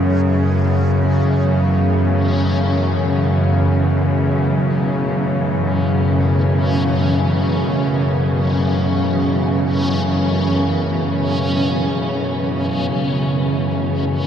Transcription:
0, 0, Header, 1, 4, 480
1, 0, Start_track
1, 0, Key_signature, 3, "minor"
1, 0, Tempo, 500000
1, 13697, End_track
2, 0, Start_track
2, 0, Title_t, "Synth texture"
2, 0, Program_c, 0, 99
2, 0, Note_on_c, 0, 68, 74
2, 213, Note_on_c, 0, 61, 76
2, 272, Note_off_c, 0, 68, 0
2, 13697, Note_off_c, 0, 61, 0
2, 13697, End_track
3, 0, Start_track
3, 0, Title_t, "Cello section"
3, 0, Program_c, 1, 48
3, 0, Note_on_c, 1, 42, 63
3, 0, Note_on_c, 1, 47, 52
3, 0, Note_on_c, 1, 52, 73
3, 0, Note_on_c, 1, 57, 58
3, 0, Note_on_c, 1, 61, 60
3, 13697, Note_off_c, 1, 42, 0
3, 13697, Note_off_c, 1, 47, 0
3, 13697, Note_off_c, 1, 52, 0
3, 13697, Note_off_c, 1, 57, 0
3, 13697, Note_off_c, 1, 61, 0
3, 13697, End_track
4, 0, Start_track
4, 0, Title_t, "Synth drone"
4, 0, Program_c, 2, 95
4, 0, Note_on_c, 2, 42, 72
4, 0, Note_on_c, 2, 49, 78
4, 13697, Note_off_c, 2, 42, 0
4, 13697, Note_off_c, 2, 49, 0
4, 13697, End_track
0, 0, End_of_file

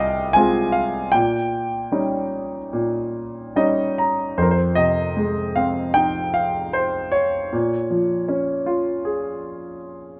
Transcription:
0, 0, Header, 1, 2, 480
1, 0, Start_track
1, 0, Tempo, 777202
1, 703, Time_signature, 4, 2, 24, 8
1, 1186, Tempo, 819672
1, 2626, Tempo, 790514
1, 3586, Tempo, 780234
1, 5026, Tempo, 757576
1, 6228, End_track
2, 0, Start_track
2, 0, Title_t, "Grand piano"
2, 0, Program_c, 0, 0
2, 0, Control_c, 0, 64, 127
2, 0, Note_on_c, 0, 36, 59
2, 0, Note_on_c, 0, 56, 44
2, 0, Note_on_c, 0, 60, 45
2, 0, Note_on_c, 0, 65, 49
2, 0, Note_on_c, 0, 75, 69
2, 0, Note_on_c, 0, 77, 94
2, 0, Note_on_c, 0, 79, 93
2, 0, Note_on_c, 0, 80, 88
2, 203, Note_off_c, 0, 75, 0
2, 206, Note_off_c, 0, 80, 0
2, 206, Note_on_c, 0, 80, 94
2, 223, Note_off_c, 0, 56, 0
2, 223, Note_on_c, 0, 56, 51
2, 225, Note_off_c, 0, 60, 0
2, 225, Note_on_c, 0, 60, 44
2, 227, Note_off_c, 0, 65, 0
2, 227, Note_on_c, 0, 65, 51
2, 447, Note_off_c, 0, 77, 0
2, 447, Note_on_c, 0, 77, 73
2, 462, Note_off_c, 0, 80, 0
2, 607, Note_off_c, 0, 56, 0
2, 608, Note_off_c, 0, 60, 0
2, 609, Note_off_c, 0, 65, 0
2, 678, Note_off_c, 0, 77, 0
2, 683, Note_off_c, 0, 36, 0
2, 690, Note_off_c, 0, 79, 0
2, 690, Note_on_c, 0, 79, 78
2, 706, Note_on_c, 0, 46, 58
2, 710, Control_c, 0, 64, 0
2, 822, Control_c, 0, 64, 127
2, 1185, Note_on_c, 0, 55, 43
2, 1185, Note_on_c, 0, 61, 40
2, 1188, Note_on_c, 0, 63, 46
2, 1562, Note_off_c, 0, 55, 0
2, 1563, Note_off_c, 0, 61, 0
2, 1565, Note_off_c, 0, 63, 0
2, 1651, Note_off_c, 0, 46, 0
2, 1660, Note_on_c, 0, 46, 51
2, 2144, Note_on_c, 0, 55, 44
2, 2148, Note_on_c, 0, 61, 43
2, 2149, Note_on_c, 0, 75, 64
2, 2151, Note_on_c, 0, 63, 52
2, 2361, Note_off_c, 0, 79, 0
2, 2375, Note_off_c, 0, 75, 0
2, 2394, Note_on_c, 0, 82, 61
2, 2528, Note_off_c, 0, 55, 0
2, 2530, Note_off_c, 0, 61, 0
2, 2532, Note_off_c, 0, 63, 0
2, 2604, Note_off_c, 0, 46, 0
2, 2611, Note_off_c, 0, 82, 0
2, 2624, Note_on_c, 0, 41, 53
2, 2625, Note_on_c, 0, 72, 59
2, 2635, Control_c, 0, 64, 0
2, 2651, Note_on_c, 0, 70, 53
2, 2669, Note_off_c, 0, 72, 0
2, 2703, Note_off_c, 0, 70, 0
2, 2705, Note_on_c, 0, 72, 57
2, 2728, Control_c, 0, 64, 127
2, 2854, Note_on_c, 0, 75, 84
2, 2866, Note_on_c, 0, 48, 41
2, 2868, Note_off_c, 0, 72, 0
2, 3104, Note_on_c, 0, 56, 46
2, 3317, Note_off_c, 0, 75, 0
2, 3340, Note_on_c, 0, 77, 69
2, 3345, Note_on_c, 0, 60, 46
2, 3573, Note_on_c, 0, 79, 80
2, 3583, Note_on_c, 0, 63, 44
2, 3590, Note_off_c, 0, 77, 0
2, 3803, Note_off_c, 0, 48, 0
2, 3804, Note_off_c, 0, 79, 0
2, 3818, Note_on_c, 0, 77, 71
2, 4043, Note_off_c, 0, 56, 0
2, 4062, Note_on_c, 0, 72, 69
2, 4072, Note_off_c, 0, 77, 0
2, 4285, Note_off_c, 0, 60, 0
2, 4290, Note_off_c, 0, 72, 0
2, 4297, Note_on_c, 0, 73, 74
2, 4526, Note_off_c, 0, 63, 0
2, 4527, Note_off_c, 0, 41, 0
2, 4550, Note_on_c, 0, 46, 57
2, 4561, Control_c, 0, 64, 0
2, 4662, Control_c, 0, 64, 127
2, 4760, Note_off_c, 0, 73, 0
2, 4783, Note_on_c, 0, 53, 44
2, 5016, Note_on_c, 0, 61, 49
2, 5256, Note_on_c, 0, 65, 50
2, 5500, Note_on_c, 0, 68, 49
2, 5716, Note_off_c, 0, 53, 0
2, 5956, Note_off_c, 0, 61, 0
2, 6197, Note_off_c, 0, 65, 0
2, 6228, Note_off_c, 0, 46, 0
2, 6228, Note_off_c, 0, 68, 0
2, 6228, End_track
0, 0, End_of_file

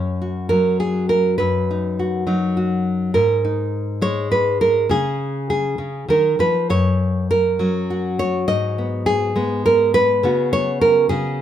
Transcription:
0, 0, Header, 1, 2, 480
1, 0, Start_track
1, 0, Key_signature, 6, "major"
1, 0, Tempo, 586510
1, 1140, Time_signature, 6, 3, 24, 8
1, 4004, Tempo, 600601
1, 6404, Tempo, 583658
1, 9300, End_track
2, 0, Start_track
2, 0, Title_t, "Nylon-string guitar"
2, 0, Program_c, 0, 24
2, 0, Note_on_c, 0, 42, 65
2, 0, Note_on_c, 0, 61, 38
2, 0, Note_on_c, 0, 73, 90
2, 176, Note_on_c, 0, 66, 40
2, 399, Note_off_c, 0, 73, 0
2, 402, Note_on_c, 0, 70, 77
2, 411, Note_on_c, 0, 54, 56
2, 650, Note_off_c, 0, 70, 0
2, 654, Note_on_c, 0, 68, 72
2, 890, Note_off_c, 0, 68, 0
2, 894, Note_on_c, 0, 70, 82
2, 1114, Note_off_c, 0, 61, 0
2, 1115, Note_off_c, 0, 66, 0
2, 1125, Note_off_c, 0, 70, 0
2, 1129, Note_on_c, 0, 71, 75
2, 1132, Note_off_c, 0, 42, 0
2, 1142, Note_on_c, 0, 42, 73
2, 1396, Note_on_c, 0, 63, 42
2, 1632, Note_on_c, 0, 66, 44
2, 1845, Note_off_c, 0, 54, 0
2, 1855, Note_off_c, 0, 63, 0
2, 1855, Note_on_c, 0, 54, 60
2, 1859, Note_on_c, 0, 63, 46
2, 2094, Note_off_c, 0, 66, 0
2, 2102, Note_on_c, 0, 66, 46
2, 2544, Note_off_c, 0, 66, 0
2, 2558, Note_off_c, 0, 71, 0
2, 2565, Note_off_c, 0, 42, 0
2, 2566, Note_off_c, 0, 54, 0
2, 2571, Note_on_c, 0, 70, 78
2, 2572, Note_on_c, 0, 44, 73
2, 2817, Note_off_c, 0, 63, 0
2, 2820, Note_on_c, 0, 63, 42
2, 3286, Note_on_c, 0, 56, 63
2, 3288, Note_off_c, 0, 70, 0
2, 3291, Note_on_c, 0, 73, 86
2, 3526, Note_off_c, 0, 73, 0
2, 3531, Note_on_c, 0, 71, 83
2, 3768, Note_off_c, 0, 71, 0
2, 3773, Note_on_c, 0, 70, 80
2, 3978, Note_off_c, 0, 56, 0
2, 3981, Note_off_c, 0, 44, 0
2, 3984, Note_off_c, 0, 63, 0
2, 4005, Note_on_c, 0, 49, 69
2, 4010, Note_off_c, 0, 70, 0
2, 4016, Note_on_c, 0, 68, 85
2, 4479, Note_off_c, 0, 68, 0
2, 4489, Note_on_c, 0, 68, 79
2, 4705, Note_off_c, 0, 49, 0
2, 4715, Note_on_c, 0, 49, 54
2, 4954, Note_off_c, 0, 49, 0
2, 4957, Note_on_c, 0, 51, 57
2, 4966, Note_off_c, 0, 68, 0
2, 4969, Note_on_c, 0, 70, 76
2, 5198, Note_off_c, 0, 51, 0
2, 5201, Note_on_c, 0, 53, 53
2, 5206, Note_off_c, 0, 70, 0
2, 5209, Note_on_c, 0, 71, 76
2, 5446, Note_on_c, 0, 42, 70
2, 5447, Note_off_c, 0, 53, 0
2, 5447, Note_off_c, 0, 71, 0
2, 5450, Note_on_c, 0, 73, 81
2, 5930, Note_off_c, 0, 73, 0
2, 5933, Note_on_c, 0, 70, 87
2, 6162, Note_on_c, 0, 54, 61
2, 6170, Note_on_c, 0, 61, 44
2, 6410, Note_on_c, 0, 66, 46
2, 6645, Note_off_c, 0, 70, 0
2, 6648, Note_on_c, 0, 73, 95
2, 6860, Note_off_c, 0, 61, 0
2, 6883, Note_off_c, 0, 42, 0
2, 6883, Note_on_c, 0, 75, 93
2, 6887, Note_on_c, 0, 44, 70
2, 6889, Note_off_c, 0, 73, 0
2, 6911, Note_off_c, 0, 66, 0
2, 7135, Note_on_c, 0, 59, 41
2, 7363, Note_on_c, 0, 68, 92
2, 7367, Note_off_c, 0, 75, 0
2, 7602, Note_off_c, 0, 54, 0
2, 7605, Note_on_c, 0, 56, 62
2, 7608, Note_off_c, 0, 59, 0
2, 7611, Note_on_c, 0, 59, 48
2, 7846, Note_off_c, 0, 68, 0
2, 7852, Note_on_c, 0, 70, 90
2, 8083, Note_off_c, 0, 70, 0
2, 8087, Note_on_c, 0, 71, 99
2, 8300, Note_off_c, 0, 44, 0
2, 8324, Note_off_c, 0, 59, 0
2, 8327, Note_on_c, 0, 49, 76
2, 8334, Note_on_c, 0, 59, 53
2, 8341, Note_on_c, 0, 66, 52
2, 8366, Note_off_c, 0, 56, 0
2, 8565, Note_off_c, 0, 71, 0
2, 8569, Note_on_c, 0, 73, 98
2, 8801, Note_off_c, 0, 73, 0
2, 8804, Note_on_c, 0, 70, 87
2, 9025, Note_off_c, 0, 66, 0
2, 9030, Note_off_c, 0, 70, 0
2, 9032, Note_off_c, 0, 49, 0
2, 9033, Note_on_c, 0, 68, 77
2, 9042, Note_on_c, 0, 49, 71
2, 9300, Note_off_c, 0, 49, 0
2, 9300, Note_off_c, 0, 59, 0
2, 9300, Note_off_c, 0, 68, 0
2, 9300, End_track
0, 0, End_of_file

